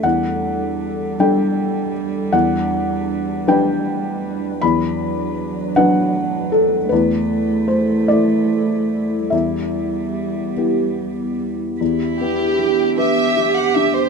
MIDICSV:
0, 0, Header, 1, 5, 480
1, 0, Start_track
1, 0, Key_signature, 1, "minor"
1, 0, Tempo, 763359
1, 23, Time_signature, 6, 3, 24, 8
1, 4343, Tempo, 795756
1, 5303, Tempo, 826446
1, 7223, Tempo, 779221
1, 8632, End_track
2, 0, Start_track
2, 0, Title_t, "Violin section"
2, 0, Program_c, 0, 48
2, 7457, Note_on_c, 0, 67, 65
2, 7915, Note_off_c, 0, 67, 0
2, 7938, Note_on_c, 0, 76, 70
2, 8301, Note_off_c, 0, 76, 0
2, 8308, Note_on_c, 0, 78, 60
2, 8419, Note_on_c, 0, 76, 64
2, 8425, Note_off_c, 0, 78, 0
2, 8540, Note_off_c, 0, 76, 0
2, 8544, Note_on_c, 0, 72, 55
2, 8632, Note_off_c, 0, 72, 0
2, 8632, End_track
3, 0, Start_track
3, 0, Title_t, "Felt piano"
3, 0, Program_c, 1, 0
3, 0, Control_c, 1, 64, 127
3, 21, Note_on_c, 1, 78, 67
3, 26, Note_on_c, 1, 40, 45
3, 34, Control_c, 1, 64, 0
3, 133, Control_c, 1, 64, 127
3, 719, Note_off_c, 1, 78, 0
3, 725, Note_off_c, 1, 40, 0
3, 753, Note_on_c, 1, 55, 38
3, 753, Note_on_c, 1, 62, 40
3, 754, Note_on_c, 1, 79, 67
3, 755, Note_on_c, 1, 69, 42
3, 1204, Note_off_c, 1, 79, 0
3, 1444, Note_off_c, 1, 55, 0
3, 1444, Note_off_c, 1, 62, 0
3, 1445, Note_off_c, 1, 69, 0
3, 1462, Note_on_c, 1, 40, 51
3, 1462, Note_on_c, 1, 78, 76
3, 1477, Control_c, 1, 64, 0
3, 1596, Control_c, 1, 64, 127
3, 2158, Note_off_c, 1, 78, 0
3, 2161, Note_off_c, 1, 40, 0
3, 2184, Note_on_c, 1, 55, 42
3, 2187, Note_on_c, 1, 71, 47
3, 2188, Note_on_c, 1, 62, 43
3, 2191, Note_on_c, 1, 79, 71
3, 2881, Note_off_c, 1, 55, 0
3, 2882, Note_off_c, 1, 62, 0
3, 2882, Note_off_c, 1, 71, 0
3, 2884, Note_off_c, 1, 79, 0
3, 2902, Note_on_c, 1, 83, 81
3, 2909, Note_on_c, 1, 40, 55
3, 2917, Control_c, 1, 64, 0
3, 3008, Control_c, 1, 64, 127
3, 3593, Note_off_c, 1, 83, 0
3, 3600, Note_off_c, 1, 40, 0
3, 3623, Note_on_c, 1, 54, 45
3, 3623, Note_on_c, 1, 78, 78
3, 3628, Note_on_c, 1, 62, 44
3, 3628, Note_on_c, 1, 71, 51
3, 4076, Note_off_c, 1, 78, 0
3, 4100, Note_on_c, 1, 69, 66
3, 4318, Note_off_c, 1, 54, 0
3, 4321, Note_off_c, 1, 62, 0
3, 4321, Note_off_c, 1, 71, 0
3, 4325, Note_off_c, 1, 69, 0
3, 4333, Note_on_c, 1, 71, 61
3, 4352, Note_on_c, 1, 40, 52
3, 4354, Control_c, 1, 64, 0
3, 4452, Control_c, 1, 64, 127
3, 4791, Note_off_c, 1, 71, 0
3, 4808, Note_on_c, 1, 72, 58
3, 5037, Note_off_c, 1, 72, 0
3, 5044, Note_off_c, 1, 40, 0
3, 5052, Note_on_c, 1, 74, 67
3, 5068, Note_on_c, 1, 57, 36
3, 5070, Note_on_c, 1, 64, 36
3, 5073, Note_on_c, 1, 69, 41
3, 5754, Note_off_c, 1, 74, 0
3, 5761, Note_off_c, 1, 57, 0
3, 5762, Note_off_c, 1, 64, 0
3, 5764, Note_off_c, 1, 69, 0
3, 5770, Note_on_c, 1, 76, 47
3, 5781, Note_on_c, 1, 40, 42
3, 5792, Control_c, 1, 64, 0
3, 5909, Control_c, 1, 64, 127
3, 6482, Note_off_c, 1, 40, 0
3, 6507, Note_on_c, 1, 59, 28
3, 6511, Note_on_c, 1, 64, 29
3, 6513, Note_on_c, 1, 67, 34
3, 6957, Note_off_c, 1, 76, 0
3, 7200, Note_off_c, 1, 59, 0
3, 7203, Note_off_c, 1, 64, 0
3, 7203, Note_off_c, 1, 67, 0
3, 7224, Note_on_c, 1, 40, 41
3, 7234, Control_c, 1, 64, 0
3, 7326, Control_c, 1, 64, 127
3, 7474, Note_on_c, 1, 59, 37
3, 7709, Note_on_c, 1, 67, 36
3, 7853, Note_off_c, 1, 59, 0
3, 7949, Note_on_c, 1, 71, 38
3, 8090, Note_off_c, 1, 67, 0
3, 8187, Note_on_c, 1, 67, 40
3, 8330, Note_off_c, 1, 71, 0
3, 8427, Note_on_c, 1, 62, 39
3, 8568, Note_off_c, 1, 67, 0
3, 8632, Note_off_c, 1, 40, 0
3, 8632, Note_off_c, 1, 62, 0
3, 8632, End_track
4, 0, Start_track
4, 0, Title_t, "Analog synth pad"
4, 0, Program_c, 2, 89
4, 0, Note_on_c, 2, 69, 54
4, 26, Note_on_c, 2, 55, 57
4, 28, Note_on_c, 2, 62, 57
4, 1465, Note_off_c, 2, 69, 0
4, 1469, Note_on_c, 2, 71, 57
4, 2883, Note_off_c, 2, 62, 0
4, 2903, Note_on_c, 2, 54, 57
4, 2904, Note_on_c, 2, 62, 58
4, 2907, Note_off_c, 2, 55, 0
4, 4316, Note_off_c, 2, 62, 0
4, 4340, Note_on_c, 2, 69, 59
4, 4341, Note_off_c, 2, 54, 0
4, 4341, Note_on_c, 2, 64, 58
4, 4344, Note_off_c, 2, 71, 0
4, 4344, Note_on_c, 2, 57, 59
4, 5765, Note_on_c, 2, 59, 54
4, 5771, Note_on_c, 2, 67, 55
4, 5780, Note_off_c, 2, 69, 0
4, 5781, Note_off_c, 2, 57, 0
4, 7214, Note_off_c, 2, 59, 0
4, 7217, Note_off_c, 2, 67, 0
4, 7222, Note_off_c, 2, 64, 0
4, 7228, Note_on_c, 2, 59, 56
4, 7229, Note_on_c, 2, 62, 57
4, 7233, Note_on_c, 2, 67, 55
4, 8632, Note_off_c, 2, 59, 0
4, 8632, Note_off_c, 2, 62, 0
4, 8632, Note_off_c, 2, 67, 0
4, 8632, End_track
5, 0, Start_track
5, 0, Title_t, "Cello"
5, 0, Program_c, 3, 42
5, 23, Note_on_c, 3, 55, 50
5, 2906, Note_off_c, 3, 55, 0
5, 2913, Note_on_c, 3, 54, 58
5, 4320, Note_off_c, 3, 54, 0
5, 4341, Note_on_c, 3, 57, 55
5, 5757, Note_off_c, 3, 57, 0
5, 5783, Note_on_c, 3, 55, 41
5, 7081, Note_off_c, 3, 55, 0
5, 7226, Note_on_c, 3, 64, 53
5, 7948, Note_on_c, 3, 67, 59
5, 7957, Note_off_c, 3, 64, 0
5, 8632, Note_off_c, 3, 67, 0
5, 8632, End_track
0, 0, End_of_file